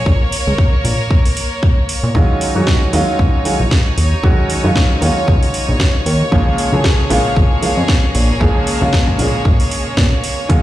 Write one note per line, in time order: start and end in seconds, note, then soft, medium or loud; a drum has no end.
0.00 2.11 A#3 medium
0.00 2.11 C#5 medium
0.06 0.15 A#1 medium
0.06 2.13 A#4 medium
0.06 kick loud
0.32 open hi-hat loud
0.47 0.54 C#2 loud
0.58 kick loud
0.84 0.93 A#1 medium
0.84 open hi-hat loud
1.11 kick loud
1.25 open hi-hat medium
1.37 open hi-hat loud
1.63 kick loud
1.89 open hi-hat loud
2.03 2.10 A#2 medium
2.14 2.24 D#2 medium
2.14 2.52 D#3 medium
2.14 2.52 F#3 medium
2.14 2.52 G#3 medium
2.14 2.52 C#4 medium
2.14 6.28 D#4 medium
2.14 2.52 F4 medium
2.14 10.62 C#5 medium
2.14 kick loud
2.41 open hi-hat loud
2.55 2.63 F#2 loud
2.55 2.90 D#3 medium
2.55 2.90 F#3 medium
2.55 2.90 G#3 medium
2.55 2.91 C#4 medium
2.55 2.91 F#4 medium
2.67 kick loud
2.67 snare loud
2.93 3.02 D#2 medium
2.93 3.42 D#3 medium
2.93 3.42 F#3 medium
2.93 3.43 G#3 medium
2.93 3.43 C#4 medium
2.93 3.43 F4 loud
2.93 open hi-hat medium
3.19 3.28 C#2 medium
3.19 kick loud
3.45 3.56 D#3 medium
3.45 3.56 F#3 medium
3.45 3.56 G#3 medium
3.45 3.56 C#4 medium
3.45 3.56 F4 medium
3.45 open hi-hat loud
3.60 3.67 A#1 medium
3.71 kick loud
3.71 snare loud
3.98 4.15 D#2 medium
3.98 open hi-hat loud
4.23 4.32 D#2 medium
4.23 4.61 D#3 medium
4.23 4.61 F#3 medium
4.23 4.61 G#3 medium
4.23 4.61 C#4 medium
4.23 4.61 F#4 loud
4.23 kick loud
4.50 open hi-hat medium
4.64 4.71 F#2 loud
4.64 4.99 D#3 medium
4.64 4.99 F#3 medium
4.64 4.99 G#3 medium
4.64 4.99 C#4 medium
4.64 4.99 F4 medium
4.76 kick loud
4.76 snare loud
5.01 5.11 D#2 medium
5.01 6.29 D#3 medium
5.01 6.29 F#3 medium
5.01 6.29 G#3 medium
5.01 6.30 C#4 medium
5.01 6.30 F4 medium
5.01 open hi-hat medium
5.28 5.37 C#2 loud
5.28 kick loud
5.43 open hi-hat medium
5.54 open hi-hat medium
5.69 5.76 A#1 medium
5.80 kick loud
5.80 snare loud
6.06 6.23 D#2 medium
6.06 open hi-hat medium
6.32 6.41 A#1 medium
6.32 6.69 C#3 medium
6.32 6.69 F3 medium
6.32 6.69 G#3 medium
6.32 6.69 A#3 medium
6.32 10.46 A#3 medium
6.32 6.70 F4 loud
6.32 10.46 G#4 medium
6.32 kick loud
6.58 open hi-hat medium
6.72 6.80 C#2 loud
6.72 7.07 C#3 medium
6.72 7.08 F3 medium
6.72 7.08 G#3 medium
6.72 7.08 A#3 medium
6.72 7.08 G#4 medium
6.84 kick loud
6.84 snare loud
7.10 7.19 A#1 medium
7.10 7.60 C#3 medium
7.10 7.60 F3 medium
7.10 7.60 G#3 medium
7.10 7.60 A#3 medium
7.10 7.60 F4 loud
7.10 open hi-hat medium
7.36 7.45 G#1 loud
7.36 kick loud
7.62 7.73 C#3 medium
7.62 7.73 F3 medium
7.62 7.73 G#3 medium
7.62 7.74 A#3 medium
7.62 7.74 F4 medium
7.62 open hi-hat medium
7.77 7.84 F2 medium
7.88 kick loud
7.88 snare loud
8.15 8.32 A#1 medium
8.15 open hi-hat medium
8.40 8.50 A#1 medium
8.40 8.78 C#3 medium
8.40 8.78 F3 medium
8.40 8.78 G#3 medium
8.40 8.78 A#3 medium
8.40 8.78 G#4 loud
8.40 kick loud
8.67 open hi-hat medium
8.81 8.89 C#2 loud
8.81 9.16 C#3 medium
8.81 9.16 F3 medium
8.81 9.16 G#3 medium
8.81 9.17 A#3 medium
8.81 9.17 F4 medium
8.93 kick loud
8.93 snare loud
9.08 kick medium
9.18 9.28 A#1 medium
9.18 10.46 C#3 medium
9.18 10.47 F3 medium
9.18 10.47 G#3 medium
9.18 10.47 A#3 medium
9.18 10.47 F4 medium
9.18 open hi-hat medium
9.45 9.54 G#1 loud
9.45 kick loud
9.60 open hi-hat medium
9.71 open hi-hat medium
9.86 9.95 A#2 soft
9.97 10.06 A#2 medium
9.97 kick loud
9.97 snare loud
10.24 open hi-hat medium
10.49 10.58 D#2 loud
10.49 10.62 D#3 medium
10.49 10.62 F#3 medium
10.49 10.62 G#3 medium
10.49 10.62 C#4 medium
10.49 10.62 D#4 medium
10.49 10.62 F4 loud
10.49 kick loud
10.49 closed hi-hat medium